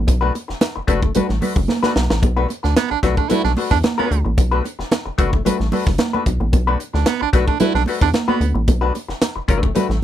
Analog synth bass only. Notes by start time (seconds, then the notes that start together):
0.08 B1
0.50 F#1
0.77 F#1
0.88 F#1
1.16 A1
1.30 A1
1.56 F#1
1.96 B1
2.11 A1
2.23 B1
2.64 D2
2.91 B1
3.03 B1
3.45 B1
3.71 E2
4.11 D2
4.26 A1
4.38 B1
4.79 F#1
5.06 F#1
5.19 F#1
5.45 A1
5.60 A1
5.87 F#1
6.27 B1
6.40 A1
6.53 B1
6.94 D2
7.22 B1
7.33 B1
7.75 B1
8.02 E2
8.41 D2
8.55 A1
8.68 B1
9.09 F#1
9.36 F#1
9.48 F#1
9.89 A1